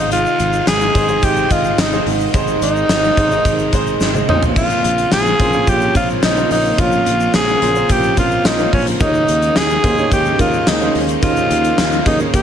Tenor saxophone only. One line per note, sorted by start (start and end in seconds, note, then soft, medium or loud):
0.00 0.10 D#4 medium
0.12 0.64 F4 loud
0.68 1.26 G#4 loud
1.24 1.53 G4 loud
1.52 1.79 F4 medium
1.80 2.05 D#4 medium
2.63 3.97 D#4 loud
4.30 4.42 D#4 loud
4.58 5.09 F4 loud
5.13 5.70 G#4 loud
5.69 5.96 G4 loud
5.97 6.09 F4 loud
6.24 6.50 D#4 loud
6.52 6.82 D#4 loud
6.80 7.35 F4 loud
7.36 7.93 G#4 loud
7.92 8.18 G4 loud
8.19 8.48 F4 loud
8.47 8.74 D#4 medium
8.74 8.87 C#4 medium
9.02 9.59 D#4 loud
9.58 10.12 G#4 loud
10.13 10.38 G4 loud
10.41 10.70 F4 medium
10.69 10.96 D#4 medium
11.24 12.03 F4 loud
12.08 12.20 D#4 medium
12.36 12.42 G#4 loud